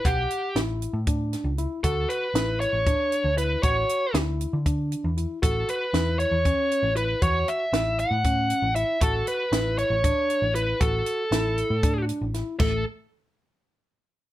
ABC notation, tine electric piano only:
X:1
M:7/8
L:1/8
Q:1/4=117
K:D
V:1 name="Tine electric piano"
f2 E2 D2 E | F2 E2 D2 E | F2 E2 D2 E | F2 E2 C2 E |
F2 E2 C2 E | F2 E2 D2 E | F2 E2 D2 E | A, z6 |]